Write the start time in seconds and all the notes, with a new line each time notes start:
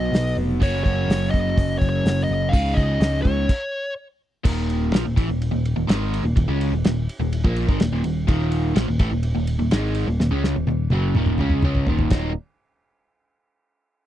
Already playing: B1 B2 F#3 B3 D#4 F#4 D#5
0.12 B1, snare, open hi-hat
0.37 F1
0.60 F#1 F#2 C#3 F#3 A#3 C#4 F#4 C#5, kick, open hi-hat
0.84 F#1 C#5, kick
1.08 F#1, snare, open hi-hat
1.30 F#1 D#5, kick
1.57 F#1, kick, open hi-hat
1.79 F#1 C#5, kick
1.89 C#5
2.04 F#1, snare, open hi-hat
2.24 D#5
2.29 F#1
2.49 C#3 F5
2.53 C#2 G#3 C#4 D#4 G#4, kick, open hi-hat
2.74 C#2 D#5, kick
3.00 C#2, snare, open hi-hat
3.22 C#2 C#5, kick
3.49 kick, crash
4.44 D#1 D#2 A#2 D#3, kick, crash
4.70 ride
4.93 A#1 A#2 F3, snare, ride
5.05 D#1 D#2 A#2
5.16 A1 A2 E3, kick, ride
5.28 D#1 D#2 A#2
5.42 ride
5.51 D#1 D#2 A#2
5.65 ride
5.76 D#1 D#2 A#2
5.87 G#1 G#2 D#3 G#3, snare, ride
6.14 ride
6.23 D#1 D#2 A#2
6.36 D#1 D#2 A#2, kick, ride
6.48 C#2 C#3 G#3 C#4
6.61 ride
6.72 D#1 D#2 A#2
6.84 D#1 D#2 A#2, snare, ride
7.09 ride
7.20 D#1 D#2 A#2
7.32 ride
7.44 A#1 A#2 F3 A#3, kick
7.56 ride
7.68 G#1 G#2 D#3, kick
7.80 D#1 D#2 A#2, snare, ride
7.92 D#1 D#2 A#2
8.04 D#1 D#2 A#2, ride
8.27 D#1 D#2 A#2 D#3, kick, ride
8.52 ride
8.75 A#1 A#2 F3, snare, ride
8.87 D#1 D#2 A#2
8.99 A1 A2 E3, kick, ride
9.11 D#1 D#2 A#2
9.23 ride
9.35 D#1 D#2 A#2
9.47 ride
9.59 D#1 D#2 A#2
9.71 G#1 G#2 D#3 G#3, snare, ride
9.95 ride
10.07 D#1 D#2 A#2
10.19 D#1 D#2 A#2, snare
10.31 C#2 C#3 G#3 C#4
10.44 snare
10.56 D#1 D#2 A#2
10.67 D#1 D#2 A#2, high tom
10.90 F#1 F#2 C#3 F#3, high tom
11.15 D#1 D#2 A#2 D#3, mid tom
11.26 mid tom
11.38 C#2 C#3 G#3 C#4, mid tom
11.50 mid tom
11.62 C#2 C#3 G#3 C#4, mid tom
11.75 floor tom
11.87 D#1 D#2 A#2 D#3, floor tom
11.99 floor tom
12.10 D#1 D#2 A#2 D#3 F#3 A#3 D#4, kick, snare, crash